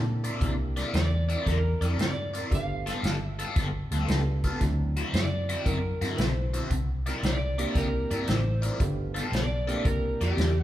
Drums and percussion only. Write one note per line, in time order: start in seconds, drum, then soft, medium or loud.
0.24 closed hi-hat medium
0.41 kick loud
0.41 closed hi-hat medium
0.77 snare soft
0.77 closed hi-hat soft
0.94 snare loud
0.94 closed hi-hat medium
1.29 closed hi-hat medium
1.46 kick loud
1.46 snare soft
1.46 closed hi-hat medium
1.82 closed hi-hat medium
1.99 snare loud
1.99 closed hi-hat medium
2.35 closed hi-hat medium
2.52 kick loud
2.52 snare soft
2.52 closed hi-hat loud
2.87 snare soft
2.87 closed hi-hat medium
3.04 snare loud
3.04 closed hi-hat medium
3.39 closed hi-hat medium
3.56 kick loud
3.56 snare soft
3.56 closed hi-hat medium
3.92 closed hi-hat medium
4.08 snare loud
4.08 closed hi-hat medium
4.44 kick medium
4.44 closed hi-hat medium
4.61 kick loud
4.61 snare soft
4.61 closed hi-hat medium
4.96 closed hi-hat medium
5.14 snare loud
5.14 closed hi-hat medium
5.49 closed hi-hat medium
5.66 kick loud
5.66 closed hi-hat medium
6.02 snare soft
6.02 closed hi-hat medium
6.18 snare loud
6.18 closed hi-hat medium
6.54 closed hi-hat medium
6.71 kick loud
6.71 closed hi-hat loud
7.06 snare soft
7.06 closed hi-hat medium
7.23 snare medium
7.23 closed hi-hat medium
7.59 closed hi-hat medium
7.75 kick loud
7.75 snare soft
7.75 closed hi-hat medium
8.11 closed hi-hat medium
8.27 snare loud
8.27 closed hi-hat medium
8.63 closed hi-hat medium
8.80 kick loud
8.80 closed hi-hat medium
9.16 snare soft
9.16 closed hi-hat medium
9.33 snare loud
9.33 closed hi-hat medium
9.69 closed hi-hat medium
9.85 kick loud
9.85 closed hi-hat medium
10.21 closed hi-hat medium
10.38 snare loud
10.38 closed hi-hat medium